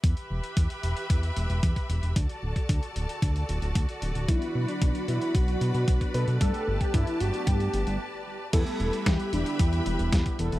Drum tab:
CC |----------------|----------------|----------------|----------------|
HH |xx-xxxxxxxxxxxxx|xx-xxxxxxxxxxxxx|xx-xxxxxxxxxxxxx|xx-xxxxxxxxx----|
SD |----------------|----------------|----------------|----------------|
BD |o---o---o---oo--|o--oo---o---o---|o---o---o---oo--|o--oo---o-------|

CC |x---------------|
HH |xxxxxxxxxxxxxxxx|
SD |----o-------o---|
BD |o---o---o---oo--|